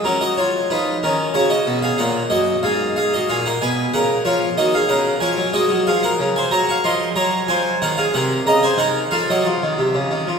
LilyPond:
<<
  \new Staff \with { instrumentName = "Harpsichord" } { \time 4/4 \key ges \major \tempo 4 = 92 <des' bes'>16 <ges' ees''>16 <f' des''>8 <ees' ces''>8 <des' bes'>8 <ges' des''>16 <ges' ees''>8 <aes' f''>16 <bes' ges''>8 <ges' ees''>8 | <aes' f''>8 <aes' f''>16 <ges' ees''>16 <aes' f''>16 <bes' ges''>16 <ces'' aes''>8 <bes' ges''>8 <f' des''>8 <ges' ees''>16 <aes' f''>16 <bes' ges''>8 | \key ges \lydian <des'' aes''>8 <ges' ees''>8 <aes' f''>16 <bes' ges''>8 <c'' aes''>16 <des'' bes''>16 <f'' des'''>16 <ees'' c'''>8 <des'' bes''>8 <c'' aes''>8 | <bes' ges''>16 <aes' f''>16 <bes' ges''>8 <ees'' bes''>16 <c'' aes''>16 <bes' ges''>8 <a' f''>16 <ges' ees''>16 r4. | }
  \new Staff \with { instrumentName = "Harpsichord" } { \clef bass \time 4/4 \key ges \major ges4 f8 ees8 des8 ces8 bes,8 ges,8 | aes,4 bes,8 ces8 des8 f8 ees8 des8 | \key ges \lydian f16 ges16 aes16 ges16 f8 des8 ges8 f8 ges8 f8 | ees8 c8 des8 ees8 f16 ges16 f16 ees16 c16 des16 ees16 f16 | }
>>